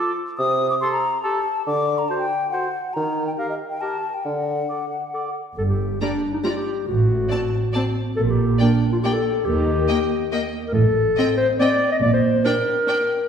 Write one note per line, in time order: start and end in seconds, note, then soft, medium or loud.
0.00 0.11 F4 medium
0.00 0.12 A4 soft
0.00 0.17 D6 medium
0.38 0.74 C3 medium
0.38 0.68 D#6 medium
0.70 0.75 D6 medium
0.81 0.96 G4 medium
0.81 0.98 A4 medium
0.81 0.91 C6 medium
0.92 1.22 A#5 medium
1.23 1.40 G4 medium
1.23 1.40 A4 medium
1.23 1.65 A5 medium
1.67 2.03 D3 medium
1.67 2.00 D6 medium
1.98 2.10 A#5 medium
2.08 2.25 F#4 soft
2.08 2.26 C5 soft
2.08 2.18 A5 medium
2.18 2.50 G5 medium
2.51 2.68 F#4 medium
2.51 2.69 C5 soft
2.51 2.95 F#5 medium
2.94 3.32 D#3 medium
2.94 3.26 A#5 medium
3.27 3.32 G5 medium
3.38 3.54 G4 soft
3.38 3.54 A#4 soft
3.38 3.49 F5 medium
3.49 3.55 D#5 medium
3.69 3.82 G5 medium
3.81 3.98 G4 soft
3.81 3.97 A#4 soft
3.81 4.16 A5 medium
4.14 4.26 G5 soft
4.24 4.62 D3 soft
4.24 5.35 F#5 medium
4.70 4.86 A4 soft
4.70 4.86 D5 soft
5.14 5.30 A4 soft
5.14 5.30 D5 soft
5.57 5.94 G1 soft
5.57 5.94 G2 medium
5.57 5.63 A4 medium
5.68 6.00 G4 soft
6.01 6.10 G3 soft
6.01 6.33 D4 medium
6.01 6.10 D5 soft
6.01 6.09 A#5 soft
6.34 6.39 D#4 soft
6.44 6.52 G3 soft
6.44 6.49 F4 medium
6.44 6.54 D5 soft
6.44 6.52 A#5 soft
6.55 6.87 G4 medium
6.88 7.24 A1 medium
6.88 7.24 A2 soft
6.88 7.93 F#4 medium
7.30 7.39 C4 soft
7.30 7.38 D5 soft
7.30 7.39 A5 soft
7.73 7.83 C4 soft
7.73 7.81 D5 soft
7.73 7.82 A5 soft
8.17 8.53 A#1 medium
8.17 8.53 A#2 medium
8.17 8.22 A4 medium
8.28 8.60 G4 soft
8.60 8.69 A#3 soft
8.60 8.92 D4 medium
8.60 8.68 D5 soft
8.60 8.68 G5 soft
8.92 8.97 F4 medium
9.03 9.12 A#3 soft
9.03 9.15 G4 medium
9.03 9.12 D5 soft
9.03 9.13 G5 soft
9.13 9.47 A4 medium
9.45 9.82 D#2 medium
9.45 9.82 D#3 medium
9.45 10.52 G4 medium
9.88 9.97 A#3 medium
9.88 9.96 D#5 medium
9.88 9.97 G5 soft
10.32 10.40 A#3 medium
10.32 10.40 D#5 medium
10.32 10.40 G5 soft
10.67 10.75 A#4 medium
10.74 11.08 A1 medium
10.74 11.08 A2 medium
10.74 11.37 A4 medium
11.17 11.25 C4 medium
11.17 11.25 D#5 soft
11.17 11.26 G5 soft
11.37 11.47 C5 medium
11.59 11.68 C4 medium
11.59 11.90 D5 medium
11.59 11.68 D#5 medium
11.59 11.69 G5 soft
11.92 11.96 D#5 medium
12.02 12.36 A#1 medium
12.02 12.35 A#2 medium
12.02 12.12 D5 medium
12.13 12.44 C5 medium
12.45 12.53 D4 medium
12.45 13.29 A#4 medium
12.45 12.53 D5 soft
12.45 12.54 G5 soft
12.87 12.95 D4 soft
12.87 12.96 D5 soft
12.87 12.96 G5 soft